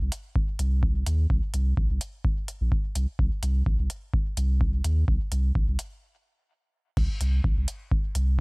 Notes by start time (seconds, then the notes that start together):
0.01 C2
0.12 closed hi-hat
0.36 kick
0.59 C2, closed hi-hat
0.83 kick
1.06 D#2, closed hi-hat
1.30 C2, kick
1.54 C2, closed hi-hat
1.77 A#1, kick
1.90 C2
2.01 closed hi-hat
2.25 kick
2.48 closed hi-hat
2.61 A#1
2.72 kick
2.95 C2, closed hi-hat
3.19 C2, kick
3.43 C2, closed hi-hat
3.66 A#1, kick
3.79 C2
3.90 closed hi-hat
4.14 kick
4.37 C2, closed hi-hat
4.61 kick
4.84 D#2, closed hi-hat
5.08 C2, kick
5.32 C2, closed hi-hat
5.55 A#1, kick
5.68 C2
5.79 closed hi-hat
6.97 C2, kick, crash
7.21 C2, closed hi-hat
7.44 A#1, kick
7.57 C2
7.68 closed hi-hat
7.92 kick
8.15 C2, closed hi-hat